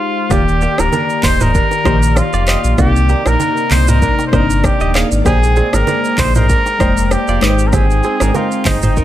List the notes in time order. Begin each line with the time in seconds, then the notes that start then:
Already playing: G#3 D#4 F4 G4 C5
0.30 D#1 D#3 A#3 F4 G4 D5, kick, cross-stick, low conga, shaker
0.48 shaker
0.61 A#3 G4, low bongo, shaker
0.78 D1 D4 A#4, cross-stick, low bongo, shaker
0.92 D4 A#4, high bongo, low conga, shaker
1.10 shaker
1.23 D#1 D#4 C5, kick, clap, open hi-hat, low conga, shaker
1.40 D#4 A#4 C5, mid tom, low bongo, shaker
1.55 D4 A#4, kick, shaker
1.71 high bongo, shaker
1.84 A#1 D#3 A#3 D#4 G4 C5 D5, kick, cross-stick, high bongo, low bongo, shaker
2.03 shaker
2.16 F4, cross-stick, high bongo, shaker
2.33 F1 F4 D5, shaker
2.47 G4 D#5, cross-stick, clap, shaker
2.64 A#1, shaker
2.77 C2 C3 A#3 D#4 F4 G4 D5, kick, cross-stick, low conga, shaker
2.96 shaker
3.09 A#3 G4, low bongo, shaker
3.26 A#1 D4 A#4, cross-stick, low bongo, shaker
3.40 D4 A#4, high bongo, low conga, shaker
3.57 shaker
3.71 C2 D#4 C5, clap, open hi-hat, low conga, shaker
3.88 D#4 A#4 C5, mid tom, low bongo, shaker
4.02 D4 A#4, kick, shaker
4.19 high bongo, shaker
4.27 C5
4.32 G1 C3 A#3 D4 D#4 A#4 C5 D5, kick, cross-stick, high bongo, low bongo, shaker
4.40 D#4
4.50 shaker
4.64 G4, kick, cross-stick, high bongo, shaker
4.81 D#1 G4 D#5, shaker
4.94 G#4 F5, cross-stick, clap, shaker
5.11 G#1, shaker
5.25 A#1 G#3 A#3 G4 G#4 C5 D5 G5, kick, cross-stick, low conga, shaker
5.43 shaker
5.56 C4 G#4, low bongo, shaker
5.73 G#1 D4 A#4, cross-stick, low bongo, shaker
5.87 D4 A#4, high bongo, low conga, shaker
6.04 shaker
6.18 A#1 D#4 C5, kick, clap, open hi-hat, low conga, shaker
6.35 D#4 A#4 C5, mid tom, low bongo, shaker
6.49 D4 A#4, kick, shaker
6.66 high bongo, shaker
6.79 F1 G#3 A#3 D#4 C5 D5 G5, kick, cross-stick, high bongo, low bongo, shaker
6.97 shaker
7.11 G4, cross-stick, high bongo, shaker
7.28 F1 F4 D5, shaker
7.41 G#1 G#3 C4 D#4 G4 B4 D#5 G5, cross-stick, clap, shaker
7.50 C5
7.59 shaker
7.67 A#4
7.73 C4 G4 G#4, kick, cross-stick, low conga, shaker
7.90 shaker
8.03 C4 G#4, low bongo, shaker
8.20 G#1 D4 A#4, cross-stick, low bongo, shaker
8.35 D#4 F4 A#4, high bongo, low conga, shaker
8.52 shaker
8.65 G1 D#4 C5, kick, clap, open hi-hat, low conga, shaker
8.82 D#4 C5, mid tom, low bongo, shaker
8.97 D#4 A#4, kick, shaker